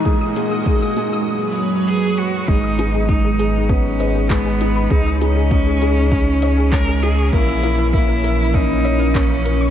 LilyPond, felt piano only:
\new Staff \with { instrumentName = "Felt piano" } { \time 4/4 \key gis \minor \tempo 4 = 99 gis8 gis8 gis8 gis8 r2 | gis8 dis'8 gis8 gis'8 b8 b'8 gis8 dis'8 | gis8 dis'8 gis8 gis'8 cis'8 cis''8 gis8 dis'8 | ais8 e'8 ais8 ais'8 cis'8 cis''8 ais8 e'8 | }